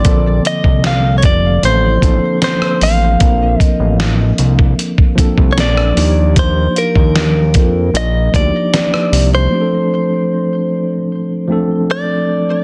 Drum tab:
HH |x-x---x-x-x-x-o-|x-x---x-x-x-x-o-|x-x---x-x-x-x-o-|----------------|
SD |----o-------or--|----o-------or--|----o-------or--|----------------|
BD |o--o--o---o-----|o-o----o-ooo----|o--o--o---o-----|----------------|